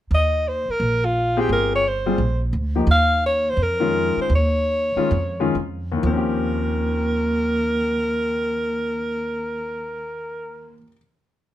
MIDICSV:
0, 0, Header, 1, 5, 480
1, 0, Start_track
1, 0, Tempo, 346620
1, 144, Time_signature, 4, 2, 24, 8
1, 4944, Tempo, 368550
1, 5904, Tempo, 401875
1, 6864, Tempo, 455927
1, 7824, Tempo, 493016
1, 13202, End_track
2, 0, Start_track
2, 0, Title_t, "Alto saxophone"
2, 0, Program_c, 0, 65
2, 200, Note_on_c, 0, 75, 84
2, 669, Note_on_c, 0, 72, 84
2, 690, Note_off_c, 0, 75, 0
2, 977, Note_on_c, 0, 70, 94
2, 997, Note_off_c, 0, 72, 0
2, 1452, Note_on_c, 0, 65, 83
2, 1472, Note_off_c, 0, 70, 0
2, 1936, Note_on_c, 0, 67, 78
2, 1957, Note_off_c, 0, 65, 0
2, 2083, Note_off_c, 0, 67, 0
2, 2107, Note_on_c, 0, 70, 82
2, 2375, Note_off_c, 0, 70, 0
2, 2429, Note_on_c, 0, 73, 87
2, 2600, Note_on_c, 0, 72, 75
2, 2620, Note_off_c, 0, 73, 0
2, 3359, Note_off_c, 0, 72, 0
2, 4029, Note_on_c, 0, 77, 97
2, 4450, Note_off_c, 0, 77, 0
2, 4513, Note_on_c, 0, 73, 83
2, 4837, Note_on_c, 0, 72, 90
2, 4857, Note_off_c, 0, 73, 0
2, 5016, Note_on_c, 0, 70, 81
2, 5036, Note_off_c, 0, 72, 0
2, 5766, Note_off_c, 0, 70, 0
2, 5779, Note_on_c, 0, 72, 85
2, 5917, Note_off_c, 0, 72, 0
2, 5959, Note_on_c, 0, 73, 81
2, 7309, Note_off_c, 0, 73, 0
2, 7865, Note_on_c, 0, 70, 75
2, 12421, Note_off_c, 0, 70, 0
2, 13202, End_track
3, 0, Start_track
3, 0, Title_t, "Grand piano"
3, 0, Program_c, 1, 0
3, 1895, Note_on_c, 1, 60, 64
3, 1896, Note_on_c, 1, 67, 71
3, 1899, Note_on_c, 1, 68, 80
3, 1901, Note_on_c, 1, 65, 68
3, 2507, Note_off_c, 1, 60, 0
3, 2508, Note_off_c, 1, 67, 0
3, 2509, Note_off_c, 1, 68, 0
3, 2510, Note_off_c, 1, 65, 0
3, 2854, Note_on_c, 1, 68, 68
3, 2857, Note_on_c, 1, 60, 61
3, 2858, Note_on_c, 1, 55, 66
3, 2864, Note_on_c, 1, 65, 64
3, 3003, Note_off_c, 1, 68, 0
3, 3005, Note_off_c, 1, 60, 0
3, 3006, Note_off_c, 1, 55, 0
3, 3008, Note_off_c, 1, 65, 0
3, 3814, Note_on_c, 1, 58, 59
3, 3816, Note_on_c, 1, 63, 59
3, 3818, Note_on_c, 1, 53, 64
3, 3824, Note_on_c, 1, 67, 69
3, 3962, Note_off_c, 1, 58, 0
3, 3963, Note_off_c, 1, 63, 0
3, 3964, Note_off_c, 1, 53, 0
3, 3967, Note_off_c, 1, 67, 0
3, 5243, Note_on_c, 1, 61, 57
3, 5244, Note_on_c, 1, 51, 63
3, 5249, Note_on_c, 1, 56, 60
3, 5253, Note_on_c, 1, 65, 76
3, 5866, Note_off_c, 1, 61, 0
3, 5867, Note_off_c, 1, 51, 0
3, 5869, Note_off_c, 1, 56, 0
3, 5871, Note_off_c, 1, 65, 0
3, 6692, Note_on_c, 1, 51, 65
3, 6695, Note_on_c, 1, 61, 57
3, 6696, Note_on_c, 1, 56, 62
3, 6698, Note_on_c, 1, 65, 78
3, 6848, Note_off_c, 1, 51, 0
3, 6850, Note_off_c, 1, 61, 0
3, 6851, Note_off_c, 1, 56, 0
3, 6852, Note_off_c, 1, 65, 0
3, 7167, Note_on_c, 1, 56, 61
3, 7170, Note_on_c, 1, 61, 67
3, 7174, Note_on_c, 1, 51, 69
3, 7175, Note_on_c, 1, 65, 78
3, 7313, Note_off_c, 1, 56, 0
3, 7314, Note_off_c, 1, 61, 0
3, 7316, Note_off_c, 1, 51, 0
3, 7317, Note_off_c, 1, 65, 0
3, 7712, Note_on_c, 1, 39, 68
3, 7767, Note_on_c, 1, 51, 58
3, 7820, Note_on_c, 1, 53, 57
3, 7867, Note_on_c, 1, 60, 62
3, 7916, Note_on_c, 1, 61, 56
3, 7970, Note_on_c, 1, 67, 69
3, 12399, Note_off_c, 1, 39, 0
3, 12451, Note_off_c, 1, 51, 0
3, 12499, Note_off_c, 1, 53, 0
3, 12546, Note_off_c, 1, 60, 0
3, 12595, Note_off_c, 1, 61, 0
3, 12649, Note_off_c, 1, 67, 0
3, 13202, End_track
4, 0, Start_track
4, 0, Title_t, "Upright bass"
4, 0, Program_c, 2, 32
4, 147, Note_on_c, 2, 39, 82
4, 881, Note_off_c, 2, 39, 0
4, 1104, Note_on_c, 2, 34, 77
4, 2014, Note_off_c, 2, 34, 0
4, 2065, Note_on_c, 2, 31, 81
4, 2973, Note_off_c, 2, 31, 0
4, 3021, Note_on_c, 2, 34, 78
4, 3464, Note_off_c, 2, 34, 0
4, 3501, Note_on_c, 2, 38, 81
4, 3944, Note_off_c, 2, 38, 0
4, 3970, Note_on_c, 2, 39, 87
4, 4893, Note_off_c, 2, 39, 0
4, 4941, Note_on_c, 2, 41, 82
4, 5676, Note_off_c, 2, 41, 0
4, 5888, Note_on_c, 2, 39, 82
4, 6633, Note_off_c, 2, 39, 0
4, 6859, Note_on_c, 2, 41, 84
4, 7292, Note_off_c, 2, 41, 0
4, 7326, Note_on_c, 2, 41, 75
4, 7789, Note_off_c, 2, 41, 0
4, 7831, Note_on_c, 2, 39, 90
4, 12471, Note_off_c, 2, 39, 0
4, 13202, End_track
5, 0, Start_track
5, 0, Title_t, "Muted upright bass strokes"
5, 948, Note_on_c, 9, 29, 38
5, 1086, Note_off_c, 9, 29, 0
5, 5721, Note_on_c, 9, 29, 39
5, 5851, Note_off_c, 9, 29, 0
5, 6684, Note_on_c, 9, 29, 37
5, 6803, Note_off_c, 9, 29, 0
5, 13202, End_track
0, 0, End_of_file